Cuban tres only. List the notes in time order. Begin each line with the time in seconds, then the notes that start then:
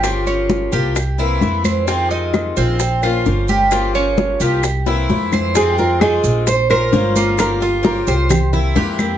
Already playing: G4
0.27 C#4
0.73 G4
1.19 E4
1.65 C5
1.88 C4
2.11 D#4
2.57 C4
3.03 F4
3.49 G4
3.95 C#4
4.41 G4
4.87 E4
5.33 C5
5.56 C4
6.02 D#4
6.47 C5
6.71 A#4
7.16 A#3
7.62 F4
8.08 C5
8.53 E4
8.76 G4